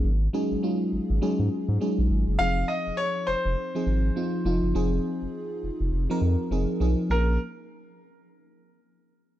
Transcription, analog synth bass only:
X:1
M:4/4
L:1/16
Q:"Swing 16ths" 1/4=102
K:Fphr
V:1 name="Analog synth bass" clef=bass
A,,,2 z A,,, z2 A,,, A,,, z A,, z A,, z B,,, A,,, G,,, | F,,,2 z F,,, z2 F,,, F,,, z2 A,,,2 z2 F,,, G,,, | F,,,2 z F,,, z2 F,,, F,,, F,,, z F,, z F,,, z _C,, z | B,,,2 z12 z2 |]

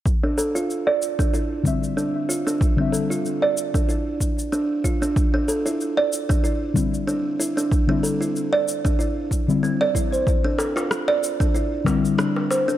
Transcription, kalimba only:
X:1
M:4/4
L:1/16
Q:"Swing 16ths" 1/4=94
K:C
V:1 name="Kalimba"
z D A F z d2 D E4 D z F D- | D D A F z d2 D E4 D z F D | z D A E z d2 D E4 D z E D- | D D A E z d2 D E z3 C d E c |
z D A F z d2 D E4 D z c D |]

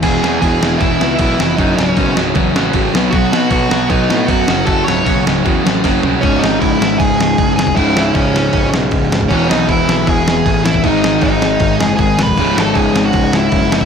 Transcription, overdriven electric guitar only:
X:1
M:4/4
L:1/8
Q:1/4=156
K:C#m
V:1 name="Overdriven electric guitar" clef=bass
[E,,B,,E,] [E,,B,,E,] [E,,B,,E,] [E,,B,,E,] [E,,B,,E,] [E,,B,,E,] [E,,B,,E,] [E,,B,,E,] | [F,,C,F,] [F,,C,F,] [F,,C,F,] [F,,C,F,] [F,,C,F,] [F,,C,F,] [F,,C,F,] [B,,F,B,] | [B,,F,B,] [B,,F,B,] [B,,F,B,] [B,,F,B,] [B,,F,B,] [B,,F,B,] [B,,F,B,] [F,,C,F,] | [F,,C,F,] [F,,C,F,] [F,,C,F,] [F,,C,F,] [F,,C,F,] [F,,C,F,] [F,,C,F,] [F,,C,F,] |
[C,,G,,C,]8 | [C,,G,,C,]8 | [E,,B,,E,]8 | [G,,D,G,]8 |
[C,,G,,C,]8 |]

